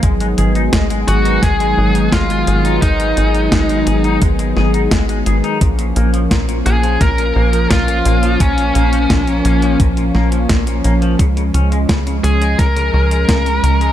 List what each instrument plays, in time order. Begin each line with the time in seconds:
0.03 analog synth bass G#1, analog synth pad D#3 G#3 B3 G#4, clean electric guitar G#3, kick, closed hi-hat
0.20 clean electric guitar G#3, closed hi-hat
0.38 analog synth bass G#1, clean electric guitar G#4, closed hi-hat
0.55 clean electric guitar D#4, closed hi-hat
0.73 analog synth bass G#1, clean electric guitar G#3, kick, snare, closed hi-hat
0.90 clean electric guitar G#3, closed hi-hat
1.08 analog synth bass G#1, lead electric guitar F#4, clean electric guitar G#4, closed hi-hat
1.25 clean electric guitar D#4, closed hi-hat
1.43 analog synth bass G#1, clean electric guitar G#3, lead electric guitar G#4, kick, snare, closed hi-hat
1.60 clean electric guitar G#3, closed hi-hat
1.78 analog synth bass G#1, clean electric guitar G#4
1.95 clean electric guitar D#4, closed hi-hat
2.12 analog synth bass G#1, clean electric guitar G#3, lead electric guitar F4, kick, snare, closed hi-hat
2.30 clean electric guitar G#3, closed hi-hat
2.47 analog synth bass G#1, clean electric guitar G#4, closed hi-hat
2.65 clean electric guitar D#4, closed hi-hat
2.82 analog synth bass G#1, clean electric guitar G#3, lead electric guitar D#4, kick, closed hi-hat
3.00 clean electric guitar G#3, closed hi-hat
3.17 analog synth bass G#1, clean electric guitar G#4, closed hi-hat
3.35 clean electric guitar D#4, closed hi-hat
3.52 analog synth bass G#1, clean electric guitar G#3, kick, snare, closed hi-hat
3.69 clean electric guitar G#3, closed hi-hat
3.87 analog synth bass G#1, clean electric guitar G#4, closed hi-hat
4.04 clean electric guitar D#4, closed hi-hat
4.22 analog synth bass G#1, clean electric guitar G#3, kick, closed hi-hat
4.39 clean electric guitar G#3, closed hi-hat
4.56 analog synth bass G#1, clean electric guitar G#4, snare
4.74 clean electric guitar D#4, closed hi-hat
4.91 analog synth bass G#1, clean electric guitar G#3, kick, snare, closed hi-hat
5.09 clean electric guitar G#3, closed hi-hat
5.26 analog synth bass G#1, clean electric guitar G#4, closed hi-hat
5.44 clean electric guitar D#4, closed hi-hat
5.61 analog synth bass A#1, clean electric guitar A#2, analog synth pad F3 A#3 C#4, kick, closed hi-hat
5.79 clean electric guitar A#2, closed hi-hat
5.96 analog synth bass A#1, clean electric guitar A#3, closed hi-hat
6.14 clean electric guitar F3, closed hi-hat
6.31 analog synth bass A#1, clean electric guitar A#2, kick, snare, closed hi-hat
6.49 clean electric guitar A#2, closed hi-hat
6.66 analog synth bass A#1, clean electric guitar A#3, lead electric guitar G#4, closed hi-hat
6.83 clean electric guitar F3, closed hi-hat
7.01 analog synth bass A#1, clean electric guitar A#2, lead electric guitar A#4, kick, snare, closed hi-hat
7.18 clean electric guitar A#2, closed hi-hat
7.36 analog synth bass A#1, clean electric guitar A#3
7.53 clean electric guitar F3, closed hi-hat
7.71 analog synth bass A#1, clean electric guitar A#2, lead electric guitar F4, kick, snare, closed hi-hat
7.88 clean electric guitar A#2, closed hi-hat
8.05 analog synth bass A#1, clean electric guitar A#3, closed hi-hat
8.23 clean electric guitar F3, closed hi-hat
8.40 analog synth bass A#1, clean electric guitar A#2, lead electric guitar C#4, kick, closed hi-hat
8.58 clean electric guitar A#2, closed hi-hat
8.75 analog synth bass A#1, clean electric guitar A#3, closed hi-hat
8.93 clean electric guitar F3, closed hi-hat
9.10 analog synth bass A#1, clean electric guitar A#2, kick, snare, closed hi-hat
9.27 clean electric guitar A#2, closed hi-hat
9.45 analog synth bass A#1, clean electric guitar A#3, closed hi-hat
9.62 clean electric guitar F3, closed hi-hat
9.80 analog synth bass A#1, clean electric guitar A#2, kick, closed hi-hat
9.97 clean electric guitar A#2, closed hi-hat
10.15 analog synth bass A#1, clean electric guitar A#3, snare
10.32 clean electric guitar F3, closed hi-hat
10.49 analog synth bass A#1, clean electric guitar A#2, kick, snare, closed hi-hat
10.67 clean electric guitar A#2, closed hi-hat
10.84 analog synth bass A#1, clean electric guitar A#3, closed hi-hat
11.02 clean electric guitar F3, closed hi-hat
11.19 analog synth bass C#2, clean electric guitar C#3, analog synth pad G#3, kick, closed hi-hat
11.37 clean electric guitar C#3, closed hi-hat
11.54 analog synth bass C#2, clean electric guitar C#4, closed hi-hat
11.72 clean electric guitar G#3, closed hi-hat
11.89 analog synth bass C#2, clean electric guitar C#3, kick, snare, closed hi-hat
12.07 clean electric guitar C#3, closed hi-hat
12.24 analog synth bass C#2, clean electric guitar C#4, lead electric guitar G#4, closed hi-hat
12.42 clean electric guitar G#3, closed hi-hat
12.59 analog synth bass C#2, clean electric guitar C#3, lead electric guitar A#4, kick, snare, closed hi-hat
12.76 clean electric guitar C#3, closed hi-hat
12.94 analog synth bass C#2, clean electric guitar C#4
13.11 clean electric guitar G#3, closed hi-hat
13.29 analog synth bass C#2, clean electric guitar C#3, kick, snare, closed hi-hat
13.46 clean electric guitar C#3, closed hi-hat
13.63 analog synth bass C#2, clean electric guitar C#4, closed hi-hat
13.81 clean electric guitar G#3, closed hi-hat